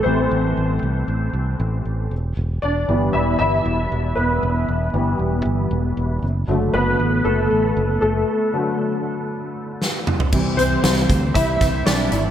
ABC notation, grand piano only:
X:1
M:4/4
L:1/8
Q:1/4=117
K:Em
V:1 name="Grand piano"
c4 z4 | z2 [Dd]2 [Ee] [Ee]3 | [B,B]4 z4 | z2 [B,B]2 [A,A]3 [A,A]- |
[A,A]6 z2 | z [Cc]3 [Ee]2 [Dd]2 |]
V:2 name="Grand piano" clef=bass
[E,A,C]8 | z3 [E,G,B,]4- [E,G,B,]- | [E,G,B,]3 [E,G,B,]4- [E,G,B,] | z [D,F,A,] z6 |
z [D,F,A,]6- [D,F,A,] | [E,G,C] z6 z |]